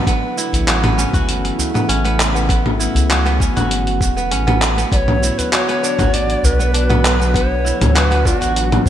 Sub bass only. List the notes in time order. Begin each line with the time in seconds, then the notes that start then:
0.53 A1
1.14 G1
1.89 A1
2.96 C#2
3.56 G1
4.01 E1
4.31 A1
4.92 B1
5.99 A1
6.43 B1
7.81 D2
8.41 A1